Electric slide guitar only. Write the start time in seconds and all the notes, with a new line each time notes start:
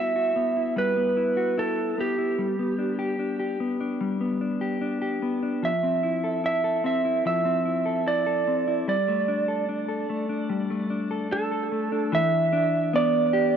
Already playing: E5
0.78 B4
1.59 A4
2.01 G4
5.65 E5
6.46 E5
6.86 E5
7.27 E5
8.08 D5
8.89 D5
11.32 A4
12.15 E5
12.96 D5